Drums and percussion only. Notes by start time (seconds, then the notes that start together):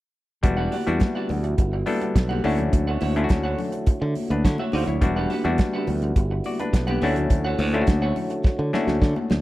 0.43 kick, closed hi-hat, muted conga, low conga
0.72 open hi-hat, muted conga, high conga
0.87 closed hi-hat
1.00 kick, snare, closed hi-hat, muted conga, high conga
1.29 open hi-hat, muted conga, low conga
1.44 closed hi-hat
1.58 kick, closed hi-hat, muted conga
1.86 open hi-hat, muted conga, high conga
2.01 closed hi-hat, high conga
2.16 kick, snare, closed hi-hat
2.31 high conga
2.44 open hi-hat, muted conga, high conga
2.58 closed hi-hat, low conga
2.73 kick, closed hi-hat, low conga
3.01 open hi-hat, muted conga, high conga
3.16 closed hi-hat
3.29 kick, snare, closed hi-hat, high conga
3.59 open hi-hat, muted conga, low conga
3.72 closed hi-hat
3.86 kick, closed hi-hat
4.15 open hi-hat, muted conga, high conga
4.30 closed hi-hat, high conga
4.45 kick, snare, closed hi-hat
4.58 high conga
4.72 open hi-hat, high conga
4.86 closed hi-hat, low conga
5.02 kick, closed hi-hat, low conga
5.30 open hi-hat, high conga
5.45 closed hi-hat
5.58 kick, snare, closed hi-hat, muted conga, high conga
5.87 open hi-hat, muted conga, low conga
6.02 closed hi-hat
6.16 kick, closed hi-hat, muted conga
6.44 open hi-hat, muted conga, high conga
6.59 closed hi-hat, high conga
6.73 kick, snare, closed hi-hat
6.88 high conga
7.02 open hi-hat, muted conga, high conga
7.16 closed hi-hat, low conga
7.30 kick, closed hi-hat, muted conga, low conga
7.59 open hi-hat, muted conga, high conga
7.74 closed hi-hat
7.87 kick, snare, closed hi-hat, high conga
8.16 open hi-hat, muted conga, low conga
8.30 closed hi-hat
8.44 kick, snare
8.74 snare, muted conga, high conga
8.88 snare, high conga
9.02 kick, snare
9.16 high conga
9.30 snare, muted conga, high conga